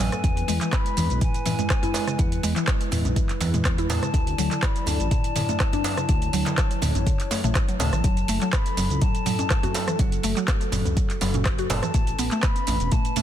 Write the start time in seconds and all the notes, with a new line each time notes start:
Already playing: A3 C#4 B4
0.00 A1 F#3 G#5, shaker
0.12 A4, cross-stick, closed hi-hat, shaker
0.23 E2 E3 G#3 E4, kick, closed hi-hat, shaker
0.37 closed hi-hat, shaker
0.48 E2 G#3, open hi-hat, shaker
0.61 E3, clap, closed hi-hat, shaker
0.73 B5, kick, cross-stick, clap, closed hi-hat, shaker
0.86 closed hi-hat, shaker
0.97 E2 E3, open hi-hat, djembe tone, shaker
1.10 B1, closed hi-hat, shaker
1.21 E3 G#5, kick, closed hi-hat, mid tom, shaker
1.34 closed hi-hat, shaker
1.46 E3, mid tom, open hi-hat, djembe tone, shaker
1.59 G#3, closed hi-hat, djembe tone, shaker
1.70 kick, cross-stick, clap, closed hi-hat, shaker
1.83 E4, closed hi-hat, djembe bass, shaker
1.94 open hi-hat, djembe slap, djembe tone, shaker
2.07 C#3, cross-stick, closed hi-hat, shaker
2.18 E2 E3 F#5, kick, closed hi-hat, djembe tone, shaker
2.32 closed hi-hat, shaker
2.43 E2 G#3, open hi-hat, shaker
2.56 E3, clap, closed hi-hat, shaker
2.68 kick, cross-stick, clap, closed hi-hat, shaker
2.81 closed hi-hat, shaker
2.91 E2 E3, mid tom, open hi-hat, djembe tone, shaker
3.05 B1, closed hi-hat, djembe bass, shaker
3.16 E3, kick, closed hi-hat, shaker
3.29 clap, closed hi-hat, shaker
3.41 E2 E3, open hi-hat, djembe slap, djembe tone, shaker
3.54 G#3, closed hi-hat, mid tom, djembe tone, shaker
3.65 kick, cross-stick, clap, closed hi-hat, shaker
3.78 E4, closed hi-hat, shaker
3.89 E2 A5, mid tom, open hi-hat, djembe slap, djembe tone, shaker
4.03 C#3, cross-stick, closed hi-hat, shaker
4.13 D2 D3 F#3 D5, kick, closed hi-hat, shaker
4.27 closed hi-hat, shaker
4.38 D2 F#3, open hi-hat, shaker
4.51 D3, clap, closed hi-hat, shaker
4.63 B5, kick, cross-stick, clap, closed hi-hat, shaker
4.76 closed hi-hat, shaker
4.86 D2 D3 A5, open hi-hat, djembe tone, shaker
5.00 A1, closed hi-hat, shaker
5.11 D3, kick, closed hi-hat, mid tom, shaker
5.24 closed hi-hat, shaker
5.36 D3, mid tom, open hi-hat, djembe tone, shaker
5.49 A3, closed hi-hat, djembe tone, shaker
5.60 kick, cross-stick, clap, closed hi-hat, shaker
5.73 D4, closed hi-hat, djembe bass, shaker
5.84 open hi-hat, djembe slap, djembe tone, shaker
5.97 C#3, cross-stick, closed hi-hat, shaker
6.09 D2 D3 C#5, kick, closed hi-hat, djembe tone, shaker
6.22 closed hi-hat, shaker
6.33 D2 F#3, open hi-hat, shaker
6.46 D3, clap, closed hi-hat, djembe slap, shaker
6.58 kick, cross-stick, clap, closed hi-hat, shaker
6.71 closed hi-hat, shaker
6.82 D2 D3, mid tom, open hi-hat, djembe tone, shaker
6.95 A1, closed hi-hat, djembe bass, shaker
7.06 D3, kick, closed hi-hat, shaker
7.20 clap, closed hi-hat, shaker
7.31 A3, open hi-hat, djembe slap, djembe tone, shaker
7.44 A1 A3, closed hi-hat, mid tom, djembe tone, shaker
7.55 kick, cross-stick, clap, closed hi-hat, shaker
7.68 F#3, closed hi-hat, shaker
7.79 D2 C#3 A5, mid tom, open hi-hat, djembe slap, djembe tone, shaker
7.93 A1 D3, cross-stick, closed hi-hat, shaker
8.04 F#1 F#3 A4, kick, closed hi-hat, shaker
8.17 closed hi-hat, shaker
8.28 F#1 A3, open hi-hat, shaker
8.41 F#3, clap, closed hi-hat, shaker
8.53 B5, kick, cross-stick, clap, closed hi-hat, shaker
8.66 closed hi-hat, shaker
8.77 F#1 F#3, open hi-hat, djembe tone, shaker
8.90 C#2, closed hi-hat, shaker
9.01 F#3 A5, kick, closed hi-hat, mid tom, shaker
9.15 closed hi-hat, shaker
9.26 F#3, mid tom, open hi-hat, djembe tone, shaker
9.39 C#4, closed hi-hat, djembe tone, shaker
9.50 kick, cross-stick, clap, closed hi-hat, shaker
9.63 F#4, closed hi-hat, djembe bass, shaker
9.74 open hi-hat, djembe slap, djembe tone, shaker
9.88 E3, cross-stick, closed hi-hat, shaker
9.99 F#1 F#3 F#4 F#5, kick, closed hi-hat, djembe tone, shaker
10.12 closed hi-hat, shaker
10.23 F#1 A3, open hi-hat, shaker
10.37 F#3, clap, closed hi-hat, shaker
10.48 kick, cross-stick, clap, closed hi-hat, shaker
10.61 closed hi-hat, shaker
10.72 F#1 F#3, mid tom, open hi-hat, djembe tone, shaker
10.85 C#2, closed hi-hat, djembe bass, shaker
10.97 F#3, kick, closed hi-hat, shaker
11.10 clap, closed hi-hat, shaker
11.21 F#1 F#3, open hi-hat, djembe slap, djembe tone, shaker
11.34 C#4, closed hi-hat, mid tom, djembe tone, shaker
11.45 kick, cross-stick, clap, closed hi-hat, shaker
11.58 F#4, closed hi-hat, shaker
11.70 F#1 A5, mid tom, open hi-hat, djembe slap, djembe tone, shaker
11.83 E3, cross-stick, closed hi-hat, shaker
11.94 A1 A3 C#4 B4, kick, closed hi-hat, shaker
12.07 closed hi-hat, shaker
12.19 A1 B3, open hi-hat, shaker
12.31 A3, clap, closed hi-hat, shaker
12.43 B5, kick, cross-stick, clap, closed hi-hat, shaker
12.56 closed hi-hat, shaker
12.67 A1 A3, open hi-hat, djembe tone, shaker
12.80 E1, closed hi-hat, shaker
12.92 A3 A5, kick, closed hi-hat, mid tom, shaker
13.05 closed hi-hat, shaker
13.16 A3, mid tom, open hi-hat, djembe tone, shaker